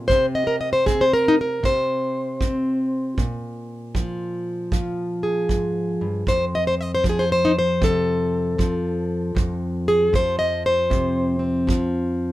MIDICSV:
0, 0, Header, 1, 3, 480
1, 0, Start_track
1, 0, Tempo, 772201
1, 63, Time_signature, 4, 2, 24, 8
1, 7658, End_track
2, 0, Start_track
2, 0, Title_t, "Steel-string acoustic guitar"
2, 0, Program_c, 0, 25
2, 48, Note_on_c, 0, 72, 99
2, 68, Note_on_c, 0, 48, 78
2, 158, Note_off_c, 0, 72, 0
2, 218, Note_on_c, 0, 75, 98
2, 292, Note_on_c, 0, 70, 95
2, 344, Note_off_c, 0, 70, 0
2, 368, Note_off_c, 0, 75, 0
2, 377, Note_on_c, 0, 75, 84
2, 450, Note_off_c, 0, 75, 0
2, 452, Note_on_c, 0, 72, 87
2, 526, Note_off_c, 0, 72, 0
2, 536, Note_on_c, 0, 68, 100
2, 542, Note_on_c, 0, 60, 63
2, 629, Note_on_c, 0, 72, 94
2, 642, Note_off_c, 0, 68, 0
2, 695, Note_off_c, 0, 72, 0
2, 705, Note_on_c, 0, 70, 101
2, 795, Note_off_c, 0, 60, 0
2, 798, Note_on_c, 0, 63, 105
2, 836, Note_off_c, 0, 63, 0
2, 852, Note_off_c, 0, 70, 0
2, 876, Note_on_c, 0, 70, 96
2, 1007, Note_off_c, 0, 48, 0
2, 1014, Note_on_c, 0, 48, 64
2, 1028, Note_on_c, 0, 72, 100
2, 1030, Note_off_c, 0, 70, 0
2, 1496, Note_on_c, 0, 60, 66
2, 1958, Note_off_c, 0, 60, 0
2, 1977, Note_on_c, 0, 46, 79
2, 1978, Note_off_c, 0, 48, 0
2, 1985, Note_off_c, 0, 72, 0
2, 2453, Note_on_c, 0, 53, 71
2, 2936, Note_off_c, 0, 53, 0
2, 2936, Note_on_c, 0, 53, 60
2, 3252, Note_on_c, 0, 68, 63
2, 3410, Note_off_c, 0, 46, 0
2, 3413, Note_on_c, 0, 44, 67
2, 3724, Note_off_c, 0, 44, 0
2, 3738, Note_on_c, 0, 43, 66
2, 3882, Note_off_c, 0, 68, 0
2, 3899, Note_off_c, 0, 43, 0
2, 3902, Note_on_c, 0, 41, 81
2, 3906, Note_on_c, 0, 72, 103
2, 4006, Note_off_c, 0, 72, 0
2, 4072, Note_on_c, 0, 75, 100
2, 4090, Note_off_c, 0, 53, 0
2, 4145, Note_off_c, 0, 75, 0
2, 4148, Note_on_c, 0, 72, 99
2, 4190, Note_off_c, 0, 72, 0
2, 4231, Note_on_c, 0, 75, 97
2, 4315, Note_off_c, 0, 75, 0
2, 4317, Note_on_c, 0, 72, 107
2, 4374, Note_on_c, 0, 53, 61
2, 4377, Note_off_c, 0, 72, 0
2, 4410, Note_on_c, 0, 68, 99
2, 4471, Note_on_c, 0, 72, 109
2, 4497, Note_off_c, 0, 68, 0
2, 4534, Note_off_c, 0, 72, 0
2, 4551, Note_on_c, 0, 72, 115
2, 4630, Note_on_c, 0, 63, 97
2, 4671, Note_off_c, 0, 63, 0
2, 4693, Note_off_c, 0, 72, 0
2, 4715, Note_on_c, 0, 72, 106
2, 4858, Note_on_c, 0, 48, 64
2, 4867, Note_off_c, 0, 72, 0
2, 4873, Note_on_c, 0, 69, 113
2, 5334, Note_off_c, 0, 53, 0
2, 5336, Note_on_c, 0, 53, 68
2, 5338, Note_off_c, 0, 48, 0
2, 5808, Note_off_c, 0, 41, 0
2, 5811, Note_on_c, 0, 41, 80
2, 5825, Note_off_c, 0, 69, 0
2, 6142, Note_on_c, 0, 68, 107
2, 6289, Note_off_c, 0, 53, 0
2, 6296, Note_on_c, 0, 53, 66
2, 6300, Note_off_c, 0, 68, 0
2, 6312, Note_on_c, 0, 72, 110
2, 6454, Note_off_c, 0, 72, 0
2, 6457, Note_on_c, 0, 75, 109
2, 6617, Note_off_c, 0, 75, 0
2, 6627, Note_on_c, 0, 72, 109
2, 6777, Note_on_c, 0, 48, 67
2, 7082, Note_on_c, 0, 60, 50
2, 7102, Note_off_c, 0, 72, 0
2, 7249, Note_off_c, 0, 53, 0
2, 7256, Note_on_c, 0, 53, 71
2, 7257, Note_off_c, 0, 48, 0
2, 7658, Note_off_c, 0, 41, 0
2, 7658, Note_off_c, 0, 53, 0
2, 7658, Note_off_c, 0, 60, 0
2, 7658, End_track
3, 0, Start_track
3, 0, Title_t, "Drums"
3, 59, Note_on_c, 9, 36, 69
3, 122, Note_off_c, 9, 36, 0
3, 538, Note_on_c, 9, 36, 64
3, 601, Note_off_c, 9, 36, 0
3, 1017, Note_on_c, 9, 36, 62
3, 1080, Note_off_c, 9, 36, 0
3, 1496, Note_on_c, 9, 36, 65
3, 1558, Note_off_c, 9, 36, 0
3, 1975, Note_on_c, 9, 36, 68
3, 2037, Note_off_c, 9, 36, 0
3, 2454, Note_on_c, 9, 36, 62
3, 2516, Note_off_c, 9, 36, 0
3, 2933, Note_on_c, 9, 36, 68
3, 2995, Note_off_c, 9, 36, 0
3, 3414, Note_on_c, 9, 36, 64
3, 3477, Note_off_c, 9, 36, 0
3, 3897, Note_on_c, 9, 36, 65
3, 3959, Note_off_c, 9, 36, 0
3, 4378, Note_on_c, 9, 36, 64
3, 4440, Note_off_c, 9, 36, 0
3, 4859, Note_on_c, 9, 36, 74
3, 4922, Note_off_c, 9, 36, 0
3, 5340, Note_on_c, 9, 36, 71
3, 5402, Note_off_c, 9, 36, 0
3, 5822, Note_on_c, 9, 36, 71
3, 5884, Note_off_c, 9, 36, 0
3, 6302, Note_on_c, 9, 36, 70
3, 6364, Note_off_c, 9, 36, 0
3, 6783, Note_on_c, 9, 36, 71
3, 6845, Note_off_c, 9, 36, 0
3, 7264, Note_on_c, 9, 36, 71
3, 7326, Note_off_c, 9, 36, 0
3, 7658, End_track
0, 0, End_of_file